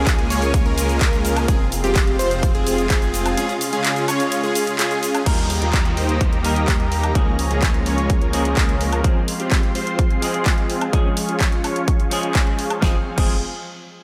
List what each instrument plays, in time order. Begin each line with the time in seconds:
Already playing: detuned saw bass C#2, analog synth pad C#3 A#3 G#4, supersaw synth G#3 A#3 C#4 F4 G#4, digital synth lead G#4
0.07 kick, clap, closed hi-hat, ride, shaker
0.19 closed hi-hat
0.30 detuned saw bass C#2, supersaw synth G#3 A#3 C#4 F4 C#5, digital synth lead C#5, open hi-hat, shaker
0.42 closed hi-hat, shaker
0.54 kick, closed hi-hat, ride, shaker
0.66 detuned saw bass C#2, supersaw synth G#3 A#3 C#4 F4 A#4, digital synth lead A#4, closed hi-hat
0.78 open hi-hat, shaker
0.89 closed hi-hat, shaker
1.01 detuned saw bass C#2, supersaw synth G#3 A#3 C#4 F4 A#4, digital synth lead A#4, kick, clap, closed hi-hat, ride, shaker
1.13 closed hi-hat, shaker
1.25 open hi-hat, shaker
1.36 closed hi-hat, high woodblock, shaker
1.48 detuned saw bass F1, analog synth pad C3 G#3 F4, supersaw synth C4 F4 G#4, digital synth lead G#4, kick, closed hi-hat, ride, shaker
1.72 open hi-hat, shaker
1.84 detuned saw bass F1, supersaw synth C4 F4 G4, digital synth lead G4, closed hi-hat, shaker
1.96 kick, clap, closed hi-hat, ride, shaker
2.07 closed hi-hat
2.19 detuned saw bass F1, supersaw synth C4 F4 C5, digital synth lead C5, open hi-hat, shaker
2.31 closed hi-hat, shaker
2.43 kick, closed hi-hat, ride, shaker
2.55 detuned saw bass F1, supersaw synth C4 F4 G#4, digital synth lead G#4, closed hi-hat
2.67 open hi-hat, shaker
2.78 closed hi-hat, shaker
2.90 detuned saw bass F1, supersaw synth C4 F4 G#4, digital synth lead G#4, kick, clap, closed hi-hat, ride, shaker
3.02 closed hi-hat, shaker
3.14 open hi-hat, shaker
3.26 closed hi-hat, high woodblock, shaker
3.37 analog synth pad C#3 G#3, supersaw synth C#4 F4 G#4, digital synth lead G#4, closed hi-hat, ride, shaker
3.49 closed hi-hat, shaker
3.61 open hi-hat, shaker
3.73 supersaw synth C#4 F4 G#4, digital synth lead G#4, closed hi-hat, shaker
3.85 clap, closed hi-hat, ride, shaker
3.96 closed hi-hat, shaker
4.08 supersaw synth C#4 F4 C#5, digital synth lead C#5, open hi-hat, high woodblock, shaker
4.20 closed hi-hat, shaker
4.32 closed hi-hat, ride, shaker
4.44 supersaw synth C#4 F4 G#4, digital synth lead G#4, closed hi-hat, shaker
4.55 open hi-hat, shaker
4.67 closed hi-hat, shaker
4.79 supersaw synth C#4 F4 G#4, digital synth lead G#4, clap, closed hi-hat, ride, shaker
4.91 closed hi-hat, shaker
5.03 open hi-hat, shaker
5.15 closed hi-hat, high woodblock, shaker
5.25 detuned saw bass D#2, clean electric guitar G3 A#3 D#4 A#4, supersaw synth A#3 D#4 G4, analog synth pad G4 D#5 A#5, kick, closed hi-hat, crash, downlifter
5.50 open hi-hat
5.62 detuned saw bass D#2, supersaw synth A#3 D#4 F4, closed hi-hat
5.74 kick, clap, closed hi-hat
5.85 closed hi-hat
5.97 detuned saw bass D#2, supersaw synth A#3 D#4 C5, open hi-hat
6.09 closed hi-hat
6.21 kick, closed hi-hat
6.33 detuned saw bass D#2, supersaw synth A#3 D#4 G4, closed hi-hat
6.43 clean electric guitar G3 A#3 D#4 A#4, open hi-hat
6.56 closed hi-hat
6.68 detuned saw bass D#2, supersaw synth A#3 D#4 G4, kick, clap, closed hi-hat
6.80 closed hi-hat
6.92 open hi-hat
7.04 closed hi-hat, high woodblock
7.14 detuned saw bass C#2, clean electric guitar F3 A#3 C#4 G#4, supersaw synth G#3 A#3 C#4 F4 A#4, analog synth pad G#4 C#5, kick, closed hi-hat
7.39 open hi-hat
7.51 detuned saw bass C#2, supersaw synth G#3 A#3 C#4 F4 G#4, closed hi-hat
7.62 kick, clap, closed hi-hat
7.74 closed hi-hat
7.86 detuned saw bass C#2, supersaw synth G#3 A#3 C#4 F4 C#5, open hi-hat
7.98 closed hi-hat
8.10 kick, closed hi-hat
8.22 detuned saw bass C#2, supersaw synth G#3 A#3 C#4 F4 A#4, closed hi-hat
8.32 clean electric guitar F3 A#3 C#4 G#4, open hi-hat
8.45 closed hi-hat
8.57 detuned saw bass C#2, supersaw synth G#3 A#3 C#4 F4 A#4, kick, clap, closed hi-hat
8.69 closed hi-hat
8.81 open hi-hat
8.93 closed hi-hat, high woodblock
9.03 clean electric guitar F3 G#3 C4, analog synth pad G#3 F5 C6, supersaw synth C4 F4 G#4, kick, closed hi-hat
9.28 open hi-hat
9.40 supersaw synth C4 F4 G4, closed hi-hat
9.52 kick, clap, closed hi-hat
9.63 closed hi-hat
9.75 supersaw synth C4 F4 C5, open hi-hat
9.87 closed hi-hat
9.99 kick, closed hi-hat
10.11 supersaw synth C4 F4 G#4, closed hi-hat
10.21 clean electric guitar F3 G#3 C4 G#4, open hi-hat
10.34 closed hi-hat
10.46 supersaw synth C4 F4 G#4, kick, clap, closed hi-hat
10.58 closed hi-hat
10.70 open hi-hat
10.81 closed hi-hat, high woodblock
10.92 clean electric guitar F3 G#3 C#4 G#4, supersaw synth C#4 F4 G#4, analog synth pad C#6, kick, closed hi-hat
11.17 open hi-hat
11.29 supersaw synth C#4 F4 G#4, closed hi-hat
11.40 kick, clap, closed hi-hat
11.52 closed hi-hat
11.64 supersaw synth C#4 F4 C#5, open hi-hat, high woodblock
11.76 closed hi-hat
11.88 kick, closed hi-hat
12.00 supersaw synth C#4 F4 G#4, closed hi-hat
12.10 clean electric guitar F3 G#3 C#4 G#4, open hi-hat
12.23 closed hi-hat
12.35 supersaw synth C#4 F4 G#4, kick, clap, closed hi-hat
12.47 closed hi-hat
12.59 open hi-hat
12.70 closed hi-hat, high woodblock
12.81 detuned saw bass F1, clean electric guitar F3 G#3 C4 G#4, analog synth pad C4 G#4 F5, supersaw synth C4 F4 G#4, kick, snare
13.16 detuned saw bass F1, clean electric guitar F3 G#3 C4 G#4, supersaw synth C4 F4 G#4, kick, crash